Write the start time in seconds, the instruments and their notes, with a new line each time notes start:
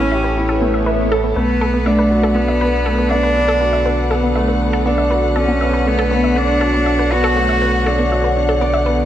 Already playing: analog synth bass A1, grand piano A3 C#4 E4 G4, cello C#4, string section E4 A4 C#5
0.12 grand piano G4, synth arpeggio sound E5
0.24 synth arpeggio sound B4
0.36 grand piano E4, swell
0.49 synth arpeggio sound A4
0.61 grand piano A3, synth arpeggio sound B3
0.74 synth arpeggio sound E5
0.86 synth arpeggio sound B4, grand piano E5
1.11 grand piano A4, synth arpeggio sound A4
1.24 synth arpeggio sound B3
1.36 analog synth bass B1, string section D3 A4 B4 F#5, grand piano A3, cello B3, synth arpeggio sound B4
1.61 grand piano B3, synth arpeggio sound A4
1.74 synth arpeggio sound B3
1.85 cello A3, grand piano D4, synth arpeggio sound E5
1.99 synth arpeggio sound B4
2.11 grand piano F#4
2.23 synth arpeggio sound A4
2.34 cello B3, synth arpeggio sound B3, grand piano D4
2.48 synth arpeggio sound E5
2.61 grand piano B3, synth arpeggio sound B4
2.86 grand piano A3, synth arpeggio sound A4
2.98 synth arpeggio sound B3
3.10 grand piano B3, cello D4, synth arpeggio sound E5
3.23 synth arpeggio sound B4
3.36 grand piano D4
3.48 synth arpeggio sound A4
3.61 synth arpeggio sound B3, grand piano F#4
3.73 synth arpeggio sound E5
3.86 grand piano D4, synth arpeggio sound B4
4.11 grand piano B3, synth arpeggio sound A4
4.23 synth arpeggio sound B3
4.35 grand piano A3, synth arpeggio sound E5
4.48 synth arpeggio sound B4
4.62 grand piano B3
4.73 synth arpeggio sound A4
4.86 synth arpeggio sound B3, grand piano D4
4.98 synth arpeggio sound E5
5.11 grand piano F#4, synth arpeggio sound B4
5.36 cello C#4, grand piano D4, synth arpeggio sound A4, string section C#5
5.48 synth arpeggio sound B3
5.61 grand piano B3, synth arpeggio sound E5
5.73 synth arpeggio sound B4
5.86 grand piano A3, cello B3
5.99 synth arpeggio sound A4
6.11 synth arpeggio sound B3, grand piano B3
6.24 synth arpeggio sound E5
6.36 grand piano D4, cello D4, synth arpeggio sound B4
6.61 grand piano F#4, synth arpeggio sound A4
6.74 synth arpeggio sound B3
6.86 grand piano D4, synth arpeggio sound E5
6.99 synth arpeggio sound B4
7.12 grand piano B3, cello F#4
7.24 synth arpeggio sound A4
7.36 grand piano A3, synth arpeggio sound B3
7.49 synth arpeggio sound E5
7.62 grand piano B3, synth arpeggio sound B4
7.86 grand piano D4, synth arpeggio sound A4
7.99 synth arpeggio sound B3
8.12 grand piano F#4, synth arpeggio sound E5
8.24 synth arpeggio sound B4
8.36 grand piano D4
8.49 synth arpeggio sound A4
8.61 synth arpeggio sound B3, grand piano D5
8.74 synth arpeggio sound E5
8.86 grand piano B3, synth arpeggio sound B4